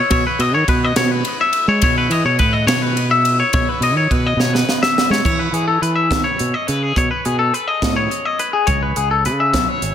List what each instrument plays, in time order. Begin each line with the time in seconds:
Already playing: clean electric guitar C#5
0.10 fingered electric bass B2, clean electric guitar C#5, kick, ride
0.27 clean electric guitar B4
0.39 fingered electric bass B2, clean electric guitar D#5, ride
0.54 fingered electric bass D#3, clean electric guitar C#5
0.68 fingered electric bass B2, clean electric guitar B4, kick, ride
0.85 clean electric guitar D#5
0.96 fingered electric bass B2, clean electric guitar C#5, snare, ride
1.11 clean electric guitar B4
1.25 ride
1.41 clean electric guitar E5
1.53 ride
1.68 fingered electric bass G#3, clean electric guitar C#5
1.82 fingered electric bass B2, clean electric guitar C#5, kick, ride
1.98 clean electric guitar B4
2.10 fingered electric bass E3, clean electric guitar D#5, ride
2.25 fingered electric bass B2, clean electric guitar C#5
2.39 fingered electric bass A2, clean electric guitar B4, kick, ride
2.53 clean electric guitar D#5
2.66 fingered electric bass B2, clean electric guitar C#5, snare, ride
2.82 clean electric guitar B4
2.97 ride
3.11 clean electric guitar E5
3.25 ride
3.40 clean electric guitar C#5
3.53 fingered electric bass B2, clean electric guitar C#5, kick, ride
3.69 clean electric guitar B4
3.80 fingered electric bass B2, clean electric guitar D#5, ride
3.95 fingered electric bass D#3, clean electric guitar C#5
4.11 fingered electric bass B2, clean electric guitar B4, kick, ride
4.26 clean electric guitar D#5
4.37 fingered electric bass B2, clean electric guitar C#5, snare
4.54 clean electric guitar B4, snare
4.69 snare
4.83 clean electric guitar E5, snare
4.98 snare
5.10 fingered electric bass G#3, clean electric guitar C#5, snare
5.25 fingered electric bass E3, clean electric guitar C#5, kick, crash
5.39 clean electric guitar B4
5.52 fingered electric bass E3, clean electric guitar G#4, closed hi-hat
5.68 clean electric guitar A4
5.82 fingered electric bass E3, clean electric guitar B4, closed hi-hat
5.95 clean electric guitar E5
6.11 fingered electric bass D#3, kick, snare, closed hi-hat
6.24 clean electric guitar C#5
6.39 fingered electric bass B2, closed hi-hat
6.54 clean electric guitar D#5
6.67 fingered electric bass C#3, clean electric guitar B4, closed hi-hat
6.83 clean electric guitar G#4
6.96 fingered electric bass B2, clean electric guitar C#5, kick, closed hi-hat
7.11 clean electric guitar B4
7.25 fingered electric bass B2, clean electric guitar G#4, closed hi-hat
7.39 clean electric guitar A4
7.54 clean electric guitar B4, closed hi-hat
7.68 clean electric guitar D#5
7.82 fingered electric bass A2, kick, snare, closed hi-hat
7.96 clean electric guitar C#5
8.11 closed hi-hat
8.25 clean electric guitar D#5
8.39 clean electric guitar B4, closed hi-hat
8.53 clean electric guitar G#4
8.67 fingered electric bass C#2, clean electric guitar C#5, kick, closed hi-hat
8.83 clean electric guitar B4
8.96 fingered electric bass C#2, clean electric guitar G#4, closed hi-hat
9.11 clean electric guitar A4
9.25 fingered electric bass C#3, clean electric guitar B4, closed hi-hat
9.40 clean electric guitar E5
9.53 fingered electric bass B1, kick, snare, closed hi-hat
9.68 clean electric guitar C#5
9.82 fingered electric bass G#1, closed hi-hat